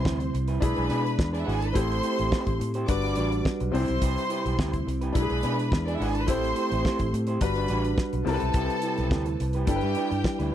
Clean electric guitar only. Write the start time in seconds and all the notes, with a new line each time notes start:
0.05 C4 E4 B4
0.20 muted clean electric guitar stroke
0.34 muted clean electric guitar stroke
0.48 C4 E4 B4
0.61 muted clean electric guitar stroke
0.76 D4 G#4 B4
0.90 D4 G#4 B4
1.05 muted clean electric guitar stroke
1.18 muted clean electric guitar stroke
1.33 D4 G#4 B4
1.45 D4 G#4 B4
1.61 muted clean electric guitar stroke
1.75 E4 G4 C5
2.03 E4 G4 C5
2.18 E4 G4 C5
2.31 E4 G4 C5
2.47 muted clean electric guitar stroke
2.59 muted clean electric guitar stroke
2.75 E4 G4 C5
2.89 muted clean electric guitar stroke
3.03 D4 F#4 B4
3.17 D4 F#4 B4
3.32 muted clean electric guitar stroke
3.61 muted clean electric guitar stroke
3.74 E4 G4 B4
3.88 muted clean electric guitar stroke
4.02 E4 G4 B4
4.30 E4 G4 B4
4.45 E4 G4 B4
4.58 E4 G4 B4
4.74 muted clean electric guitar stroke
4.87 muted clean electric guitar stroke
5.01 E4 G4 B4
5.15 muted clean electric guitar stroke
5.30 D4 G#4 B4
5.43 D4 G#4 B4
5.59 muted clean electric guitar stroke
5.72 muted clean electric guitar stroke
5.87 D4 G#4 B4
6.00 D4 G#4 B4
6.16 muted clean electric guitar stroke
6.29 E4 G4 C5
6.57 E4 G4 C5
6.72 E4 G4 C5
6.85 E4 G4 C5
7.00 muted clean electric guitar stroke
7.14 muted clean electric guitar stroke
7.28 E4 G4 C5
7.56 D4 F#4 B4
7.70 D4 F#4 B4
7.85 muted clean electric guitar stroke
8.14 muted clean electric guitar stroke
8.27 E4 G4 B4
8.42 muted clean electric guitar stroke
8.55 E4 G4 B4
8.83 E4 G4 B4
8.99 E4 G4 B4
9.12 E4 G4 B4
9.27 muted clean electric guitar stroke
9.41 muted clean electric guitar stroke
9.55 E4 G4 B4
9.68 muted clean electric guitar stroke
9.83 D4 E4 B4
9.97 D4 E4 B4
10.11 muted clean electric guitar stroke
10.25 muted clean electric guitar stroke
10.39 D4 E4 B4